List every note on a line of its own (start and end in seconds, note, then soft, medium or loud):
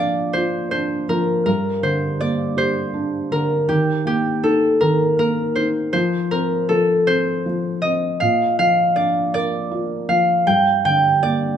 0.00 1.42 A#2 medium
0.00 1.05 F3 soft
0.00 0.70 D4 soft
0.00 0.19 A#4 medium
0.00 1.81 D5 medium
0.00 1.25 F5 medium
0.33 1.43 F4 medium
0.33 0.71 C5 medium
0.71 1.44 D4 soft
0.71 1.83 C5 medium
1.09 1.45 F3 medium
1.09 1.45 A#4 medium
1.46 3.64 G2 medium
1.46 3.32 A#4 medium
1.83 3.27 D3 soft
1.83 2.57 C5 medium
2.20 3.64 A#3 soft
2.20 4.05 D5 medium
2.57 3.65 G4 medium
2.57 4.56 C5 medium
2.94 3.66 D4 soft
3.31 3.67 D3 soft
3.31 4.50 A#4 medium
3.68 4.80 D#3 medium
3.68 4.06 G4 medium
4.05 5.17 A#3 medium
4.05 6.42 G4 medium
4.44 5.55 D#4 soft
4.44 4.87 A4 medium
4.81 5.90 D#3 medium
4.81 5.19 A#4 medium
5.18 5.91 A#3 soft
5.18 6.31 A#4 medium
5.55 5.93 D#4 soft
5.55 5.66 C5 medium
5.93 6.68 F3 medium
5.93 7.07 C5 medium
6.31 7.06 C4 soft
6.31 6.75 A#4 medium
6.69 7.44 F3 soft
6.69 8.88 A4 medium
7.07 7.83 C4 medium
7.07 9.05 C5 medium
7.46 8.19 F3 soft
7.82 8.20 C4 soft
7.82 9.02 D#5 medium
8.20 10.44 A#2 medium
8.20 8.59 F5 medium
8.59 10.06 F3 medium
8.59 10.08 F5 medium
8.96 10.43 D4 soft
8.96 9.34 D5 medium
9.34 10.44 A#4 medium
9.34 11.19 D5 loud
9.71 10.45 F4 medium
10.09 10.45 F3 soft
10.09 11.57 F5 medium
10.47 11.57 G2 medium
10.47 10.85 G5 medium
10.85 11.57 D3 medium
10.85 11.57 G5 medium
11.22 11.57 A#3 soft
11.22 11.57 D5 medium